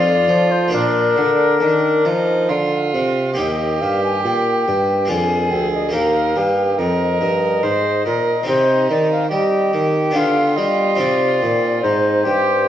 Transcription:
Already playing: F2 A3 D#4 F4 D5
0.28 F3
0.51 C5
0.68 A#3 D4 F4
0.72 A#2 D4 A#4
1.17 D3
1.60 D#3 D4
2.05 F3 D#4
2.49 D3 F4
2.94 C3
3.34 A#3 D#4 G4
3.38 D#2 D#5
3.81 G2 F5
4.04 G#5
4.24 A#2 G5
4.68 G2
5.05 A#3 D4 F4
5.09 F2 G#4 G#5
5.51 D2 G5
5.74 D#5
5.89 D#2 A#3 D#4 G4
5.93 D#2 A#4 F5
6.36 G2 G4
6.78 F2 A#4 D#5
7.21 G2
7.63 G#2 C5
8.06 A#2 A#4
8.43 C4 D#4 G4
8.48 C3 D#4 C5
8.90 D#3 D5
9.12 F5
9.31 G3 G4 D#5
9.74 D#3
10.11 B3 D4 G4 F5
10.15 D3 F4
10.56 G3 D#5
10.95 C4 D#4 G4
11.00 C3 D5
11.42 A#2
11.82 G#2 D#4 C5
12.25 G2 G4

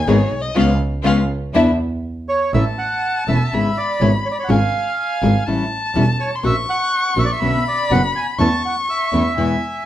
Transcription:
0.07 G#1 D#3 G#3 B3 D#4 G#4 C#5
0.31 B1
0.42 D#5
0.55 C#2 G#3 B3 C#4 F4 F5
1.03 C#2 G#3 B3 C#4 F4 F5
1.53 E2 B3 D4 E4 E5
2.29 C#5
2.53 A1 E3 A3 C#4 E4 E5 A5
2.79 F#5
3.28 E1 E3 A3 C#4 E4 E5
3.52 G#1 C#3 G#3 B3 E4 G#4 B5
3.77 D5
4.00 G#1 C#3 G#3 B3 E4 G#4 C#5
4.26 C#5
4.31 D5
4.39 C#5
4.44 F#5
4.49 G#1 C#3 G#3 C#4 F4 G#4 F5 G#5
4.97 G#5
5.22 G#1 C#3 G#3 C#4 F4 G#4
5.47 A1 E3 G3 C#4 E4 A5
5.95 E1 E3 G3 C#4 E4
6.20 C#5
6.35 C6
6.43 A#1 A#3 C#4 F#4 E5 C#6
6.70 F#5
7.16 A#1 A#3 C#4 F#4 E5
7.25 D5
7.32 E5
7.40 B1 B2 D3 B3 C#4 F#4 B5
7.68 D5
7.90 F#1 B2 D3 B3 C#4 F#4 F#5
8.16 G#5
8.39 E2 E3 A3 C#4 E4 A5 C#6
8.65 F#5
8.89 E5
9.12 E2 E3 A3 C#4 E4
9.37 E2 B2 E3 G#3 B3 E4 G#5

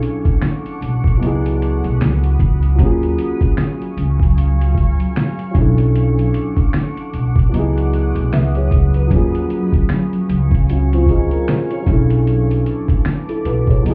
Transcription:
Already playing: F#3 C#4 D4 D#4 E4 G#4 A4 F#5 C#6 D6
0.03 closed hi-hat
0.25 kick, closed hi-hat
0.41 finger snap, snare, closed hi-hat
0.66 closed hi-hat
0.81 B1, closed hi-hat
1.04 kick, closed hi-hat
1.17 C#2 F#3 B3 F#4 B5 D#6
1.22 D#4 E4, closed hi-hat
1.27 G#4
1.46 closed hi-hat
1.62 closed hi-hat
1.84 B1, closed hi-hat
2.00 C#2, finger snap, snare, closed hi-hat
2.24 closed hi-hat
2.39 C#2, kick, closed hi-hat
2.63 closed hi-hat
2.75 D#2 F#3 A#3 F5 G#5 C#6, kick
2.79 C#4 F4, closed hi-hat
2.85 G#4
3.03 closed hi-hat
3.18 closed hi-hat
3.41 kick, closed hi-hat
3.57 finger snap, snare, closed hi-hat
3.82 closed hi-hat
3.97 C#2, closed hi-hat
4.20 kick, closed hi-hat
4.38 closed hi-hat
4.61 closed hi-hat
4.75 kick, closed hi-hat
5.00 closed hi-hat
5.16 finger snap, snare, closed hi-hat
5.39 closed hi-hat
5.51 B1 F#3 C#4 A4 F#5 D6, kick
5.56 D4 E4, closed hi-hat
5.61 A4
5.78 closed hi-hat
5.96 closed hi-hat
6.19 closed hi-hat
6.34 closed hi-hat
6.57 kick, closed hi-hat
6.73 finger snap, snare, closed hi-hat
6.97 closed hi-hat
7.13 B1, closed hi-hat
7.36 kick, closed hi-hat
7.49 C#2 F#3 B3 B5 D#6
7.54 D#4 E4, closed hi-hat
7.59 G#4
7.78 closed hi-hat
7.93 closed hi-hat
8.15 B1, closed hi-hat
8.31 C#2 B4 E5, finger snap, snare, closed hi-hat
8.55 G#4 C#5, closed hi-hat
8.71 C#2, kick, closed hi-hat
8.94 F#4 B4, closed hi-hat
9.06 F#3 A#3 F5 G#5 C#6, kick
9.11 D#2 C#4 F4, closed hi-hat
9.16 G#4
9.35 closed hi-hat
9.50 closed hi-hat
9.72 kick, closed hi-hat
9.89 finger snap, snare, closed hi-hat
10.13 closed hi-hat
10.29 C#2, closed hi-hat
10.51 kick, closed hi-hat
10.69 C#4 F#4, closed hi-hat
10.93 C4 F4, closed hi-hat
11.06 D#4 G#4, kick, closed hi-hat
11.31 F4 A#4, closed hi-hat
11.48 F#4 C5, finger snap, snare, closed hi-hat
11.71 G#4 C#5, closed hi-hat
11.83 B1 F#3 C#4 B4 A5 D6, kick
11.88 D4 E4, closed hi-hat
11.93 A4
12.10 closed hi-hat
12.27 closed hi-hat
12.51 closed hi-hat
12.66 closed hi-hat
12.88 kick, closed hi-hat
13.05 finger snap, snare, closed hi-hat
13.29 E4 A4, closed hi-hat
13.45 B1 F#4 B4, closed hi-hat
13.67 G#4 C#5, kick, closed hi-hat
13.80 C#2 F#3 B3 B4 G#5 D#6
13.85 D#4 E4, closed hi-hat
13.90 G#4

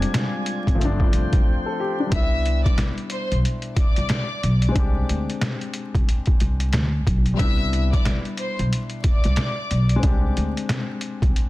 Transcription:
Already playing: G3 G#3 C4 D4 F4 D5 G#5
0.02 closed hi-hat
0.14 snare, closed hi-hat
0.46 closed hi-hat
0.67 G#1, kick, closed hi-hat
0.75 F3 A3
0.81 G1 C4 D4 C5 G5, closed hi-hat
1.00 kick
1.13 C2, closed hi-hat
1.33 kick, closed hi-hat
1.66 A4
1.80 G4
2.00 D4
2.06 G3 B3
2.12 C2 D4 E5 E6, kick, closed hi-hat
2.16 E4
2.46 closed hi-hat
2.64 D5 D6, kick, closed hi-hat
2.78 snare, closed hi-hat
2.98 closed hi-hat
3.10 C5 C6, closed hi-hat
3.32 B1, closed hi-hat
3.45 closed hi-hat
3.62 closed hi-hat
3.77 D5 D6, kick, closed hi-hat
3.96 C2, closed hi-hat
4.09 snare, closed hi-hat
4.43 B1, closed hi-hat
4.62 closed hi-hat
4.68 G#3 C4
4.75 C2 D4 G4, kick, closed hi-hat
5.09 D2, closed hi-hat
5.30 closed hi-hat
5.41 snare, closed hi-hat
5.61 closed hi-hat
5.74 closed hi-hat
5.95 C2, kick, closed hi-hat
6.09 closed hi-hat
6.26 kick, closed hi-hat
6.40 C2, closed hi-hat
6.60 closed hi-hat
6.73 D2, snare, closed hi-hat
7.07 B1, kick, closed hi-hat
7.26 closed hi-hat
7.34 G3 B3
7.38 C2 D4 E5 E6, kick, closed hi-hat
7.44 E4
7.73 closed hi-hat
7.93 D5 D6, kick, closed hi-hat
8.05 snare, closed hi-hat
8.25 closed hi-hat
8.37 C5 C6, closed hi-hat
8.59 B1, closed hi-hat
8.73 closed hi-hat
8.90 closed hi-hat
9.04 D5 D6, kick, closed hi-hat
9.24 C2, closed hi-hat
9.36 snare, closed hi-hat
9.71 B1, closed hi-hat
9.89 closed hi-hat
9.96 G#3 C4
10.03 C2 D4 G4, kick, closed hi-hat
10.37 D2, closed hi-hat
10.57 closed hi-hat
10.69 snare, closed hi-hat
11.01 closed hi-hat
11.22 C2, kick, closed hi-hat
11.36 closed hi-hat

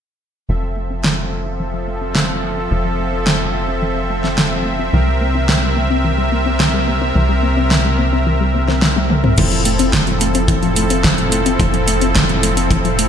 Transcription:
0.49 F1 E3 F3 C4 A4 E5
0.63 F3
0.77 A3
0.90 C4
1.04 E3, snare
1.18 F3
1.32 A3
1.46 C4
1.60 E3
1.74 F3
1.88 A3
2.01 C4
2.15 E3, snare
2.29 F3
2.43 A3
2.57 C4
2.71 F1 E3
2.85 F3
2.99 A3
3.13 C4
3.27 E3, snare
3.40 F3
3.54 A3
3.68 C4
3.82 E3
3.96 F3
4.10 A3
4.24 C4, snare
4.38 E3, snare
4.52 F3
4.65 A3
4.79 C4
4.93 C2 C3 E3 A#4
5.07 G3
5.21 A#3
5.35 C4
5.49 E3, snare
5.63 G3
5.77 A#3
5.90 C4
6.04 E3
6.18 G3
6.32 A#3
6.46 C4
6.60 E3, snare
6.74 G3
6.88 A#3
7.01 C4
7.15 C2 E3
7.29 G3
7.43 A#3
7.57 C4
7.71 E3, snare
7.85 G3
7.99 A#3
8.13 C4
8.27 E3
8.40 G3
8.54 A#3
8.68 C4, snare
8.82 E3, snare, high tom
8.96 G3, high tom
9.10 A#3, mid tom
9.24 C4, mid tom
9.38 F1 E3 F3 C4 E4 A4, kick, closed hi-hat, crash
9.52 F3, closed hi-hat
9.65 A3, closed hi-hat
9.79 C4, closed hi-hat
9.93 E3, kick, snare, closed hi-hat
10.07 F3, closed hi-hat
10.21 A3, closed hi-hat
10.35 C4, closed hi-hat
10.48 E3, kick, closed hi-hat
10.63 F3, closed hi-hat
10.76 A3, closed hi-hat
10.90 C4, closed hi-hat
11.04 E3, kick, snare, closed hi-hat
11.18 F3, closed hi-hat
11.32 A3, closed hi-hat
11.46 C4, closed hi-hat
11.60 F1 E3, kick, closed hi-hat
11.74 F3, closed hi-hat
11.88 A3, closed hi-hat
12.01 C4, closed hi-hat
12.15 E3, kick, snare, closed hi-hat
12.29 F3, closed hi-hat
12.43 A3, closed hi-hat
12.57 C4, closed hi-hat
12.71 E3, kick, closed hi-hat
12.85 F3, closed hi-hat
12.99 A3, closed hi-hat

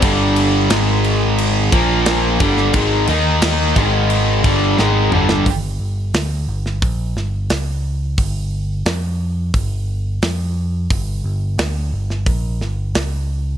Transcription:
0.02 G1 G2 D3 G3, kick, crash
0.36 crash
0.70 G#1 G#2 D#3 G#3, snare, crash
1.04 crash
1.38 crash
1.72 A#1 A#2 F3 A#3, kick, crash
2.06 snare, crash
2.40 G1 G2 D3 G3, kick, crash
2.57 snare
2.73 G#1 G#2 D#3 G#3, kick, crash
3.07 D#2 D#3 A#3 D#4, crash
3.42 snare, crash
3.76 G#1 G#2 D#3 G#3, kick, crash
4.10 crash
4.44 G1 G2 D3 G3, kick, crash
4.78 G#1 G#2 D#3 G#3, snare
5.12 G1 G2 D3 G3, mid tom
5.29 snare
5.46 G1, kick, open hi-hat
5.80 G1
6.14 D2, snare, open hi-hat
6.48 G1
6.66 snare
6.82 A#1, kick, open hi-hat
7.16 G1, snare
7.50 C#2, snare, open hi-hat
8.18 G1, kick, open hi-hat
8.86 F2, snare, open hi-hat
9.54 G1, kick, open hi-hat
10.22 F2, snare, open hi-hat
10.90 G1, kick, open hi-hat
11.24 G1
11.58 D2, snare, open hi-hat
11.92 G1
12.10 snare
12.26 A#1, kick, open hi-hat
12.61 G1, snare
12.94 C#2, snare, open hi-hat

